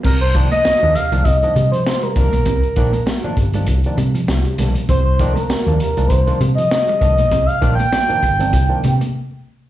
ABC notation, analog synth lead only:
X:1
M:4/4
L:1/16
Q:"Swing 16ths" 1/4=99
K:Cm
V:1 name="Analog synth lead"
B c2 e3 f2 e e2 c c B B2- | B4 z12 | c c2 B3 B2 c c2 e3 e2- | e f2 g8 z4 z |]